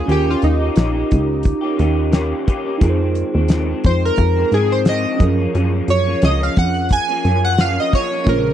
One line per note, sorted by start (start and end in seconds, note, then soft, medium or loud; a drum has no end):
0.00 0.11 G#4 medium
0.06 0.36 D#2 loud
0.06 0.27 D#3 medium
0.06 0.27 A#3 medium
0.06 2.76 C#4 medium
0.06 0.26 C#4 medium
0.06 2.77 F4 medium
0.06 0.25 G4 medium
0.06 2.78 G4 medium
0.06 closed hi-hat medium
0.11 0.29 G4 medium
0.11 2.79 A#4 medium
0.26 0.63 A#3 soft
0.26 0.61 C#4 soft
0.26 0.59 G4 soft
0.30 0.43 F4 medium
0.42 0.70 D#2 medium
0.42 2.10 D#4 medium
0.42 closed hi-hat medium
0.60 0.76 A#3 soft
0.60 0.77 C#4 soft
0.60 0.76 G4 soft
0.76 1.04 A#1 medium
0.76 0.95 D#3 medium
0.76 0.95 A#3 medium
0.76 0.94 C#4 medium
0.76 0.92 G4 medium
0.76 snare loud
0.76 closed hi-hat medium
0.93 1.63 A#3 soft
0.93 1.62 C#4 soft
0.93 1.60 G4 medium
1.11 1.54 C#2 medium
1.11 kick medium
1.11 closed hi-hat medium
1.43 kick medium
1.43 closed hi-hat medium
1.61 1.77 A#3 soft
1.61 1.78 C#4 medium
1.61 1.78 G4 medium
1.77 2.34 D#2 loud
1.77 2.10 D#3 medium
1.77 2.11 A#3 medium
1.77 2.11 C#4 medium
1.77 2.12 G4 medium
1.77 closed hi-hat medium
2.11 2.44 D#3 medium
2.11 2.46 A#3 medium
2.11 2.47 C#4 medium
2.11 2.47 G4 loud
2.11 snare loud
2.11 closed hi-hat medium
2.45 2.65 D#3 medium
2.45 2.66 A#3 medium
2.45 2.65 C#4 medium
2.45 2.64 G4 medium
2.45 kick medium
2.45 closed hi-hat medium
2.65 2.82 A#3 soft
2.65 2.82 C#4 medium
2.65 2.81 G4 medium
2.78 3.00 F2 medium
2.78 5.14 D#4 medium
2.78 5.15 F4 medium
2.78 5.16 G#4 medium
2.78 kick loud
2.78 closed hi-hat medium
2.82 3.24 F2 medium
2.82 3.00 D#3 medium
2.82 3.00 G#3 medium
2.82 2.99 C4 medium
2.82 2.89 A#4 medium
2.89 5.20 C5 medium
3.00 3.36 D#3 soft
3.00 3.35 G#3 soft
3.00 3.33 C4 medium
3.15 closed hi-hat medium
3.34 3.74 D#2 medium
3.34 3.49 D#3 medium
3.34 3.50 G#3 medium
3.34 3.49 C4 medium
3.48 3.68 F2 medium
3.48 3.69 D#3 medium
3.48 3.68 G#3 medium
3.48 3.67 C4 medium
3.48 snare loud
3.48 closed hi-hat medium
3.68 4.38 D#3 soft
3.68 4.36 G#3 soft
3.68 4.35 C4 medium
3.84 4.12 F2 medium
3.84 4.02 C5 medium
3.84 kick loud
3.84 closed hi-hat medium
4.05 4.55 A#4 medium
4.16 4.45 F2 loud
4.16 kick medium
4.16 closed hi-hat medium
4.36 4.51 D#3 soft
4.36 4.52 G#3 soft
4.36 4.52 C4 medium
4.51 4.85 F2 medium
4.51 5.06 G#2 medium
4.51 4.86 D#3 medium
4.51 4.87 G#3 medium
4.51 4.87 C4 medium
4.51 4.72 G#4 medium
4.51 closed hi-hat medium
4.72 4.79 C5 medium
4.85 5.19 F2 medium
4.85 5.19 D#3 medium
4.85 5.21 G#3 medium
4.85 5.22 C4 medium
4.85 5.19 D#5 medium
4.85 snare loud
4.85 closed hi-hat medium
5.17 5.38 F#2 medium
5.17 5.48 F#2 medium
5.17 7.89 F3 medium
5.17 5.39 F3 medium
5.17 7.88 C#4 medium
5.17 7.89 G#4 medium
5.17 kick loud
5.17 closed hi-hat medium
5.21 5.39 A#3 medium
5.21 5.36 C#4 medium
5.21 7.90 A#4 medium
5.38 5.52 F3 medium
5.38 5.53 A#3 medium
5.38 5.54 C#4 medium
5.52 5.72 F#2 medium
5.52 5.82 F#2 loud
5.52 5.73 F3 medium
5.52 5.73 A#3 medium
5.52 5.71 C#4 loud
5.52 closed hi-hat medium
5.72 6.08 F3 soft
5.72 6.06 A#3 soft
5.72 6.05 C#4 medium
5.88 6.16 F#2 medium
5.88 6.24 C#5 medium
5.88 closed hi-hat medium
6.06 6.21 F3 soft
6.06 6.21 A#3 soft
6.06 6.22 C#4 medium
6.21 6.50 C#2 medium
6.21 6.41 F#2 medium
6.21 6.41 F3 medium
6.21 6.40 A#3 medium
6.21 6.39 C#4 medium
6.21 6.41 D#5 medium
6.21 snare loud
6.21 closed hi-hat medium
6.40 7.11 F3 soft
6.40 7.09 A#3 soft
6.40 7.08 C#4 medium
6.40 6.58 F5 medium
6.56 6.99 F2 medium
6.56 6.93 F#5 medium
6.56 kick loud
6.56 closed hi-hat medium
6.74 closed hi-hat medium
6.89 7.41 G#5 loud
6.89 kick medium
6.89 closed hi-hat medium
7.08 7.24 F3 soft
7.08 7.25 A#3 soft
7.08 7.24 C#4 medium
7.24 7.56 F#2 medium
7.24 7.79 F#2 medium
7.24 7.57 F3 medium
7.24 7.58 A#3 medium
7.24 7.58 C#4 medium
7.24 closed hi-hat medium
7.45 7.60 F#5 medium
7.57 7.90 F#2 medium
7.57 7.91 F3 medium
7.57 7.92 A#3 medium
7.57 7.93 C#4 medium
7.57 7.79 F5 loud
7.57 snare loud
7.57 closed hi-hat medium
7.80 7.93 D#5 medium
7.91 8.11 F#2 medium
7.91 8.11 F3 medium
7.91 8.11 A#3 medium
7.91 8.09 C#4 medium
7.91 8.23 C#5 medium
7.91 kick medium
7.91 open hi-hat soft
8.10 8.26 F3 soft
8.10 8.27 A#3 soft
8.10 8.26 C#4 soft
8.24 8.54 A#1 loud
8.24 8.54 A#2 medium
8.24 8.54 F3 medium
8.24 8.54 G#3 medium
8.24 8.54 A#3 medium
8.24 8.54 C#4 medium
8.24 8.54 F4 medium
8.24 8.29 C#5 medium
8.24 kick loud
8.24 closed hi-hat medium
8.28 8.54 C#3 medium
8.28 8.54 G#3 medium
8.28 8.54 C#4 medium
8.28 8.54 G#4 medium
8.28 8.54 A#4 medium
8.28 8.54 C5 medium